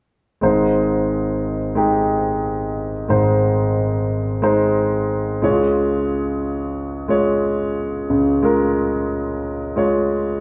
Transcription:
0.41 G#1 G#2 G#3 D#4 C5
1.75 G#3 D#4 G4
3.08 G#1 G#2 G#3 D#4 C5
4.42 G#3 D#4 C5
5.42 C#2 C#3 G#3 E4 C#5
5.49 F4
7.08 G#3 F4 C#5
8.10 C#2 C#3
8.42 G#3 F4 A#4
9.76 G#3 F4 C#5

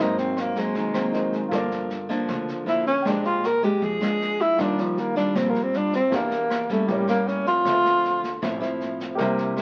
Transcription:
Already playing: D#4
0.00 G#1 G#2 F#3 A#3 C4 D#4 F#4 A#4 C5
0.18 C4, snare
0.37 A#3, cross-stick, snare
0.56 F#3 G#3 A#3 C4, kick, snare
0.75 D#2 D#3, kick, snare
0.94 F#3 A#3 C4, cross-stick, snare
1.12 D#4 F#4 A#4 C5, snare
1.32 kick, snare
1.49 G1 G2 F3 A#3 D4 F4 A4, kick, cross-stick, snare
1.53 A#4 D5
1.71 snare
1.90 snare
2.09 F3 A#3 D4, kick, snare
2.28 D2 D3, kick, cross-stick, snare
2.48 snare
2.66 F3 A#3 D4 E4, snare
2.86 C#4, kick, snare
3.02 A#1 A#2 G#3 D4 G4 C5 G5, kick, cross-stick, snare
3.08 D4 D5
3.24 F4, snare
3.44 A#4, cross-stick, snare
3.63 G#3 D4 G4, kick, snare
3.82 F2 F3 G#4, kick, snare
4.01 G#3 D4, cross-stick, snare
4.21 snare
4.40 E4, kick, snare
4.56 D#2 D#3 G3 D4 F4 G4, kick, cross-stick, snare
4.60 D4 A#4 D5
4.78 F3, snare
4.97 A#3, snare
5.16 G3 D4 F4, kick, snare
5.35 A#1 A#2 C4, kick, cross-stick, snare
5.49 A#3
5.55 snare
5.63 C4
5.73 G3 D4 F4, snare
5.93 C4, kick, snare
6.10 E2 E3 A#3 D4 E4 G4 A#4, kick, cross-stick, snare
6.15 A#3 D5
6.31 snare
6.50 cross-stick, snare
6.69 G3 A3 A#3 C#4, kick, snare
6.86 A1 A2 E4 G4, kick, snare
6.90 G3 A#4 C#5
7.08 G3 A#3 C#4, cross-stick, snare
7.27 C#4, snare
7.46 F3 C4 F4, kick, snare
7.65 D2 D3 A4 C5 E5, kick, cross-stick, snare
7.85 snare
8.04 snare
8.23 kick, snare
8.42 A1 A2 F3 C4 E4, kick, cross-stick, snare
8.60 F3 C4 E4, snare
8.80 snare
9.00 kick, snare
9.15 C2 C3 G3 G4 A#4, kick, cross-stick, snare
9.19 A#3 E4 C5 E5
9.38 snare
9.57 G3 A#3 E4, cross-stick, snare

